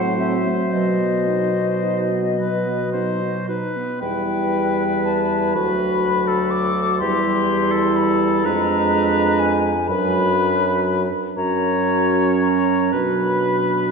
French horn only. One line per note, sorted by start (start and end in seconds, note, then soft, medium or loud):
0.00 3.64 F#3 soft
4.01 5.56 G3 soft
5.54 7.02 F#3 soft
7.01 8.44 G3 soft
8.45 9.72 G#3 medium
9.89 11.07 F#3 medium
11.38 12.90 F#3 soft
12.93 13.91 F#3 soft